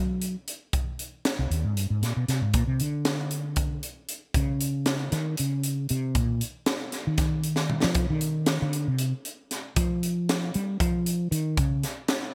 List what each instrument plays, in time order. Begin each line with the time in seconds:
Already playing: fretless electric bass F#3
0.22 closed hi-hat
0.48 closed hi-hat
0.73 kick, closed hi-hat
0.99 closed hi-hat
1.25 snare, closed hi-hat
1.39 fretless electric bass C2
1.50 fretless electric bass D#2, closed hi-hat
1.64 fretless electric bass G#2
1.77 fretless electric bass G2, closed hi-hat
1.90 fretless electric bass G#2
2.02 fretless electric bass A#2, snare, closed hi-hat
2.16 fretless electric bass B2
2.28 fretless electric bass C3, snare, closed hi-hat
2.41 fretless electric bass G#2
2.54 fretless electric bass A#2, kick, closed hi-hat
2.67 fretless electric bass C3
2.80 fretless electric bass D3, closed hi-hat
3.05 snare, closed hi-hat
3.31 closed hi-hat
3.56 kick, closed hi-hat
3.83 closed hi-hat
4.09 closed hi-hat
4.34 fretless electric bass C#3, kick, closed hi-hat
4.61 closed hi-hat
4.86 snare, closed hi-hat
5.12 fretless electric bass D#3, snare, closed hi-hat
5.37 fretless electric bass C#3, closed hi-hat
5.64 closed hi-hat
5.89 fretless electric bass C3, closed hi-hat
6.15 fretless electric bass A#2, kick, closed hi-hat
6.41 closed hi-hat
6.66 snare, closed hi-hat
6.92 snare, closed hi-hat
7.07 fretless electric bass D#3
7.18 kick, snare, closed hi-hat
7.44 closed hi-hat
7.56 snare
7.70 mid tom
7.82 fretless electric bass F3, snare
7.95 kick, closed hi-hat
8.10 fretless electric bass D#3
8.21 closed hi-hat
8.46 snare, closed hi-hat
8.62 fretless electric bass D3
8.73 closed hi-hat
8.87 fretless electric bass C3
8.99 closed hi-hat
9.25 closed hi-hat
9.51 snare, closed hi-hat
9.76 fretless electric bass F3, kick, closed hi-hat
10.03 closed hi-hat
10.29 snare, closed hi-hat
10.54 fretless electric bass G3, closed hi-hat
10.80 fretless electric bass F3, kick, closed hi-hat
11.06 closed hi-hat
11.31 fretless electric bass D#3, closed hi-hat
11.57 fretless electric bass C#3, kick, closed hi-hat
11.83 snare, closed hi-hat
12.08 snare, closed hi-hat